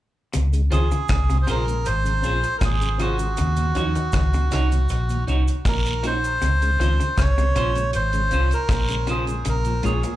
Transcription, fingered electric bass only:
0, 0, Header, 1, 2, 480
1, 0, Start_track
1, 0, Key_signature, -5, "major"
1, 0, Tempo, 759878
1, 211, Time_signature, 4, 2, 24, 8
1, 6419, End_track
2, 0, Start_track
2, 0, Title_t, "Fingered electric bass"
2, 0, Program_c, 0, 33
2, 223, Note_on_c, 0, 37, 110
2, 446, Note_off_c, 0, 37, 0
2, 459, Note_on_c, 0, 37, 85
2, 576, Note_off_c, 0, 37, 0
2, 696, Note_on_c, 0, 36, 96
2, 922, Note_off_c, 0, 36, 0
2, 938, Note_on_c, 0, 34, 83
2, 1164, Note_off_c, 0, 34, 0
2, 1179, Note_on_c, 0, 32, 87
2, 1404, Note_off_c, 0, 32, 0
2, 1419, Note_on_c, 0, 34, 87
2, 1536, Note_off_c, 0, 34, 0
2, 1655, Note_on_c, 0, 32, 85
2, 2111, Note_off_c, 0, 32, 0
2, 2145, Note_on_c, 0, 39, 105
2, 2367, Note_off_c, 0, 39, 0
2, 2377, Note_on_c, 0, 39, 84
2, 2495, Note_off_c, 0, 39, 0
2, 2617, Note_on_c, 0, 37, 94
2, 2843, Note_off_c, 0, 37, 0
2, 2859, Note_on_c, 0, 36, 83
2, 3084, Note_off_c, 0, 36, 0
2, 3095, Note_on_c, 0, 34, 83
2, 3322, Note_off_c, 0, 34, 0
2, 3335, Note_on_c, 0, 36, 87
2, 3454, Note_off_c, 0, 36, 0
2, 3574, Note_on_c, 0, 34, 86
2, 4030, Note_off_c, 0, 34, 0
2, 4058, Note_on_c, 0, 37, 105
2, 4283, Note_off_c, 0, 37, 0
2, 4297, Note_on_c, 0, 37, 83
2, 4414, Note_off_c, 0, 37, 0
2, 4536, Note_on_c, 0, 36, 88
2, 4762, Note_off_c, 0, 36, 0
2, 4775, Note_on_c, 0, 34, 81
2, 5002, Note_off_c, 0, 34, 0
2, 5022, Note_on_c, 0, 32, 90
2, 5245, Note_off_c, 0, 32, 0
2, 5258, Note_on_c, 0, 36, 76
2, 5375, Note_off_c, 0, 36, 0
2, 5490, Note_on_c, 0, 34, 94
2, 5948, Note_off_c, 0, 34, 0
2, 5978, Note_on_c, 0, 34, 91
2, 6203, Note_off_c, 0, 34, 0
2, 6221, Note_on_c, 0, 34, 99
2, 6337, Note_off_c, 0, 34, 0
2, 6419, End_track
0, 0, End_of_file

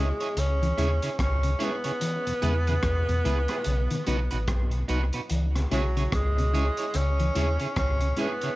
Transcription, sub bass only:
0, 0, Header, 1, 2, 480
1, 0, Start_track
1, 0, Key_signature, 4, "minor"
1, 0, Tempo, 821918
1, 1175, Time_signature, 4, 2, 24, 8
1, 4997, End_track
2, 0, Start_track
2, 0, Title_t, "Sub bass"
2, 0, Program_c, 0, 38
2, 0, Note_on_c, 0, 37, 96
2, 72, Note_off_c, 0, 37, 0
2, 215, Note_on_c, 0, 37, 84
2, 424, Note_off_c, 0, 37, 0
2, 456, Note_on_c, 0, 39, 102
2, 583, Note_off_c, 0, 39, 0
2, 695, Note_on_c, 0, 37, 97
2, 905, Note_off_c, 0, 37, 0
2, 1418, Note_on_c, 0, 40, 97
2, 1627, Note_off_c, 0, 40, 0
2, 1656, Note_on_c, 0, 40, 88
2, 1783, Note_off_c, 0, 40, 0
2, 1804, Note_on_c, 0, 40, 87
2, 1885, Note_off_c, 0, 40, 0
2, 1901, Note_on_c, 0, 37, 93
2, 2026, Note_off_c, 0, 37, 0
2, 2140, Note_on_c, 0, 35, 114
2, 2266, Note_off_c, 0, 35, 0
2, 2380, Note_on_c, 0, 35, 93
2, 2505, Note_off_c, 0, 35, 0
2, 2529, Note_on_c, 0, 33, 78
2, 2608, Note_off_c, 0, 33, 0
2, 2615, Note_on_c, 0, 35, 80
2, 2825, Note_off_c, 0, 35, 0
2, 2859, Note_on_c, 0, 36, 97
2, 2985, Note_off_c, 0, 36, 0
2, 3100, Note_on_c, 0, 37, 88
2, 3308, Note_off_c, 0, 37, 0
2, 3340, Note_on_c, 0, 35, 96
2, 3548, Note_off_c, 0, 35, 0
2, 3578, Note_on_c, 0, 37, 107
2, 3914, Note_off_c, 0, 37, 0
2, 4058, Note_on_c, 0, 37, 97
2, 4267, Note_off_c, 0, 37, 0
2, 4299, Note_on_c, 0, 39, 82
2, 4425, Note_off_c, 0, 39, 0
2, 4537, Note_on_c, 0, 37, 86
2, 4746, Note_off_c, 0, 37, 0
2, 4997, End_track
0, 0, End_of_file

